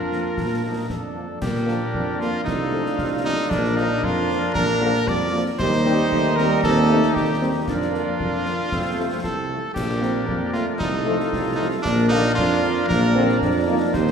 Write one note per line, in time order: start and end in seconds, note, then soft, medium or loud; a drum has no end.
0.00 0.29 F2 medium
0.00 1.12 D4 loud
0.00 0.60 F4 medium
0.00 0.89 A#4 loud
0.10 0.20 D3 soft
0.10 0.20 F3 medium
0.10 0.20 A#3 medium
0.10 snare medium
0.37 0.81 A#2 medium
0.37 concert bass drum medium
0.37 snare medium
0.64 0.73 D3 medium
0.64 0.73 F3 medium
0.64 0.73 A#3 medium
0.64 0.90 D#4 medium
0.89 1.33 F2 medium
0.89 1.40 D4 medium
0.89 1.38 A4 medium
0.89 concert bass drum medium
0.89 snare medium
1.14 1.24 D3 medium
1.14 1.25 F3 soft
1.14 1.25 A#3 soft
1.41 1.85 A#2 medium
1.41 2.42 A#3 medium
1.41 2.42 D4 medium
1.41 2.21 G4 loud
1.41 2.42 A#4 loud
1.41 2.42 D5 loud
1.41 concert bass drum loud
1.41 snare medium
1.41 crash medium
1.55 snare medium
1.66 1.76 D3 medium
1.66 1.76 F3 medium
1.66 1.76 A#3 medium
1.66 snare medium
1.93 2.37 F2 medium
1.93 4.51 D4 loud
1.93 concert bass drum medium
2.19 2.29 D3 medium
2.19 2.29 F3 medium
2.19 2.29 A#3 medium
2.19 2.44 F4 loud
2.19 snare medium
2.44 2.89 C2 loud
2.44 3.51 A3 medium
2.44 3.19 D#4 loud
2.44 3.51 F4 loud
2.44 3.50 A4 loud
2.44 3.50 F5 loud
2.44 concert bass drum medium
2.44 snare medium
2.71 2.81 C3 medium
2.71 2.81 F3 medium
2.71 2.81 A3 medium
2.86 snare medium
2.98 3.37 C2 medium
2.98 concert bass drum medium
2.98 snare medium
3.23 3.33 C3 medium
3.23 3.33 F3 medium
3.23 3.33 A3 medium
3.23 3.51 D#4 loud
3.50 3.94 A#1 loud
3.50 5.42 A#3 loud
3.50 3.79 D4 loud
3.50 5.42 D4 loud
3.50 5.56 A#4 loud
3.50 5.55 D5 loud
3.50 concert bass drum loud
3.50 snare medium
3.50 crash soft
3.64 snare medium
3.75 3.85 D3 medium
3.75 3.85 F3 loud
3.75 3.85 A#3 medium
3.75 4.06 D#4 loud
3.75 snare medium
4.03 4.46 F2 loud
4.03 4.54 F4 loud
4.03 concert bass drum medium
4.28 4.38 D3 medium
4.28 4.38 F3 medium
4.28 4.38 A#3 medium
4.28 snare medium
4.54 4.98 A#1 loud
4.54 5.03 A#3 loud
4.54 5.09 A#4 loud
4.54 concert bass drum loud
4.54 snare medium
4.80 4.90 D3 loud
4.80 4.90 F3 loud
4.80 4.89 A#3 loud
4.94 snare medium
5.06 5.50 F2 loud
5.06 5.18 G3 loud
5.06 5.43 D5 loud
5.06 concert bass drum medium
5.06 snare medium
5.32 5.42 D3 medium
5.32 5.44 F3 medium
5.32 5.41 F3 medium
5.32 5.42 A#3 medium
5.58 6.02 D#2 loud
5.58 7.64 G3 loud
5.58 6.12 G3 loud
5.58 7.63 D#4 loud
5.58 7.68 G4 loud
5.58 6.38 C5 loud
5.58 7.64 D#5 loud
5.58 concert bass drum loud
5.58 snare medium
5.58 crash soft
5.73 snare medium
5.85 5.94 D#3 loud
5.85 5.94 G3 medium
5.85 5.95 C4 loud
5.85 snare medium
6.10 6.55 D#2 medium
6.10 6.39 A3 loud
6.10 concert bass drum medium
6.36 6.46 D#3 medium
6.36 6.46 G3 medium
6.36 6.66 G3 loud
6.36 6.46 C4 medium
6.36 6.63 A#4 loud
6.36 snare medium
6.63 7.07 D#2 loud
6.63 6.89 C4 loud
6.63 7.16 A4 loud
6.63 concert bass drum loud
6.63 snare medium
6.89 6.99 D#3 medium
6.89 6.99 G3 loud
6.89 7.16 A3 loud
6.89 6.99 C4 loud
7.03 snare medium
7.15 7.59 D#2 medium
7.15 7.40 A#3 medium
7.15 7.49 G4 loud
7.15 concert bass drum medium
7.15 snare medium
7.40 7.51 D#3 medium
7.40 7.50 G3 medium
7.40 7.50 C4 medium
7.40 7.53 C4 loud
7.66 8.11 F2 medium
7.66 8.67 A#3 loud
7.66 9.46 D4 loud
7.66 8.72 D4 medium
7.66 9.20 F4 loud
7.66 8.73 A#4 loud
7.66 8.69 D5 loud
7.66 concert bass drum loud
7.66 snare medium
7.66 crash soft
7.81 snare medium
7.92 8.02 D3 medium
7.92 8.02 F3 medium
7.92 8.02 A#3 medium
7.92 snare medium
8.20 8.64 F2 medium
8.20 concert bass drum medium
8.44 8.54 D3 medium
8.44 8.54 F3 medium
8.44 8.54 A#3 medium
8.44 snare medium
8.71 9.15 F2 loud
8.71 9.50 A3 medium
8.71 9.46 C4 medium
8.71 9.47 A4 medium
8.71 9.51 C5 loud
8.71 concert bass drum loud
8.71 snare medium
8.96 9.06 C3 medium
8.96 9.06 F3 medium
8.96 9.06 A3 medium
9.23 9.63 C2 medium
9.23 9.72 A4 loud
9.23 concert bass drum medium
9.23 snare medium
9.49 9.59 C3 medium
9.49 9.59 F3 medium
9.49 9.59 A3 medium
9.74 10.19 A#1 loud
9.74 9.87 A#3 medium
9.74 10.77 A#3 medium
9.74 10.76 D4 medium
9.74 10.49 G4 loud
9.74 10.76 A#4 loud
9.74 10.76 D5 medium
9.74 concert bass drum medium
9.74 snare medium
9.74 crash medium
9.89 snare medium
10.01 10.11 D3 medium
10.01 10.11 F3 medium
10.01 10.10 A#3 medium
10.01 10.29 C4 loud
10.01 snare medium
10.27 10.72 F2 medium
10.27 10.53 A#3 medium
10.27 concert bass drum medium
10.53 10.63 D3 medium
10.53 10.63 F3 medium
10.53 10.78 A3 loud
10.53 10.63 A#3 medium
10.53 10.65 F4 loud
10.53 snare medium
10.78 11.24 C2 loud
10.78 10.92 G3 medium
10.78 11.85 A3 medium
10.78 11.54 D#4 loud
10.78 11.85 F4 medium
10.78 11.84 A4 loud
10.78 11.84 F5 loud
10.78 concert bass drum loud
10.78 snare medium
11.05 11.15 C3 medium
11.05 11.15 F3 loud
11.05 11.18 F3 loud
11.05 11.15 A3 loud
11.20 snare medium
11.32 11.76 C2 medium
11.32 11.56 G3 medium
11.32 concert bass drum loud
11.32 snare medium
11.56 11.67 C3 medium
11.56 11.67 F3 medium
11.56 11.66 A3 medium
11.56 11.70 A3 loud
11.56 11.68 D#4 loud
11.82 12.29 A#1 loud
11.82 13.93 A#3 loud
11.82 12.33 A#3 loud
11.82 12.08 D4 loud
11.82 13.89 D4 loud
11.82 13.94 A#4 loud
11.82 13.94 D5 loud
11.82 concert bass drum medium
11.82 snare medium
11.82 crash soft
11.98 snare medium
12.09 12.20 D3 loud
12.09 12.20 F3 loud
12.09 12.20 A#3 loud
12.09 12.34 D#4 loud
12.09 snare medium
12.35 12.81 F2 loud
12.35 12.85 D4 loud
12.35 12.84 F4 loud
12.35 concert bass drum medium
12.62 12.72 D3 medium
12.62 12.72 F3 medium
12.62 12.72 A#3 medium
12.62 snare medium
12.87 13.33 A#1 loud
12.87 13.13 A#3 loud
12.87 13.37 A#4 loud
12.87 concert bass drum loud
12.87 snare loud
13.14 13.25 D3 loud
13.14 13.24 F3 loud
13.14 13.24 A#3 loud
13.14 13.41 C4 loud
13.29 snare medium
13.40 13.85 F2 loud
13.40 13.68 D4 loud
13.40 concert bass drum medium
13.40 snare medium
13.67 13.77 D3 medium
13.67 13.77 F3 medium
13.67 13.77 A#3 loud
13.67 14.12 D#4 loud
13.93 14.12 D#2 loud
13.93 14.12 G3 loud
13.93 14.12 D#4 loud
13.93 14.12 G4 loud
13.93 14.12 C5 loud
13.93 14.12 D#5 loud
13.93 concert bass drum loud
13.93 snare medium
13.93 crash soft
14.07 snare medium